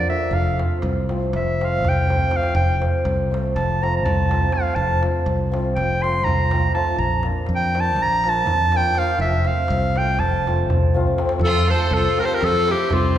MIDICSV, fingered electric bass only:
0, 0, Header, 1, 2, 480
1, 0, Start_track
1, 0, Key_signature, -1, "major"
1, 0, Tempo, 493421
1, 301, Time_signature, 9, 3, 24, 8
1, 12822, End_track
2, 0, Start_track
2, 0, Title_t, "Fingered electric bass"
2, 0, Program_c, 0, 33
2, 301, Note_on_c, 0, 29, 80
2, 598, Note_off_c, 0, 29, 0
2, 806, Note_on_c, 0, 36, 93
2, 1297, Note_on_c, 0, 29, 93
2, 1312, Note_off_c, 0, 36, 0
2, 1787, Note_off_c, 0, 29, 0
2, 1787, Note_on_c, 0, 36, 71
2, 2200, Note_off_c, 0, 36, 0
2, 2477, Note_on_c, 0, 29, 110
2, 2771, Note_off_c, 0, 29, 0
2, 2968, Note_on_c, 0, 36, 92
2, 3462, Note_on_c, 0, 29, 108
2, 3476, Note_off_c, 0, 36, 0
2, 3943, Note_off_c, 0, 29, 0
2, 3943, Note_on_c, 0, 36, 78
2, 4357, Note_off_c, 0, 36, 0
2, 4630, Note_on_c, 0, 29, 93
2, 4926, Note_off_c, 0, 29, 0
2, 5119, Note_on_c, 0, 36, 89
2, 5611, Note_on_c, 0, 29, 94
2, 5625, Note_off_c, 0, 36, 0
2, 6101, Note_off_c, 0, 29, 0
2, 6101, Note_on_c, 0, 36, 85
2, 6513, Note_off_c, 0, 36, 0
2, 6795, Note_on_c, 0, 34, 87
2, 7087, Note_off_c, 0, 34, 0
2, 7284, Note_on_c, 0, 41, 86
2, 7769, Note_off_c, 0, 41, 0
2, 7769, Note_on_c, 0, 34, 101
2, 8262, Note_off_c, 0, 34, 0
2, 8262, Note_on_c, 0, 41, 88
2, 8671, Note_off_c, 0, 41, 0
2, 8946, Note_on_c, 0, 29, 98
2, 9239, Note_off_c, 0, 29, 0
2, 9439, Note_on_c, 0, 36, 111
2, 9918, Note_on_c, 0, 29, 83
2, 9932, Note_off_c, 0, 36, 0
2, 10413, Note_off_c, 0, 29, 0
2, 10413, Note_on_c, 0, 36, 79
2, 10824, Note_off_c, 0, 36, 0
2, 11099, Note_on_c, 0, 41, 85
2, 11393, Note_off_c, 0, 41, 0
2, 11587, Note_on_c, 0, 36, 90
2, 11747, Note_off_c, 0, 36, 0
2, 12088, Note_on_c, 0, 41, 110
2, 12380, Note_off_c, 0, 41, 0
2, 12573, Note_on_c, 0, 36, 89
2, 12822, Note_off_c, 0, 36, 0
2, 12822, End_track
0, 0, End_of_file